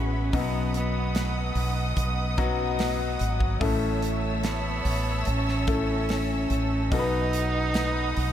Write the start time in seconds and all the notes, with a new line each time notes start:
Already playing: A1 G#3 B3 C#4 E4 F#4 G#4 B4 E5 B5
0.33 B1 B2 F#3 B3 D#4 F#4 D#5 F#5 D#6, kick, hi-hat pedal, open hi-hat
0.74 B3, hi-hat pedal, open hi-hat
1.15 snare, hi-hat pedal, open hi-hat
1.55 B1, hi-hat pedal, open hi-hat
1.96 B1, kick, hi-hat pedal, open hi-hat
2.38 F#3 B3 D#4 F#4, kick, hi-hat pedal, open hi-hat
2.79 snare, hi-hat pedal, open hi-hat
3.19 G#1, hi-hat pedal, open hi-hat
3.40 kick
3.60 A1 A2 A3 C#4 E4 A4 C#5 E5 A5 E6, kick, hi-hat pedal, open hi-hat
4.02 hi-hat pedal, open hi-hat
4.43 B3, snare, hi-hat pedal, open hi-hat
4.85 A1, hi-hat pedal, open hi-hat
5.25 A1 C#4, hi-hat pedal, open hi-hat
5.48 snare
5.67 A3 C#4 E4 A4, kick, hi-hat pedal, open hi-hat
6.09 snare, hi-hat pedal, open hi-hat
6.50 A1, hi-hat pedal, open hi-hat
6.90 B1 B2 B3 D#4 F#4 A4 B4 D#5 F#5 D#6, kick, hi-hat pedal, open hi-hat
6.99 B4
7.33 hi-hat pedal, open hi-hat
7.74 snare, hi-hat pedal, open hi-hat
8.17 B1, hi-hat pedal, open hi-hat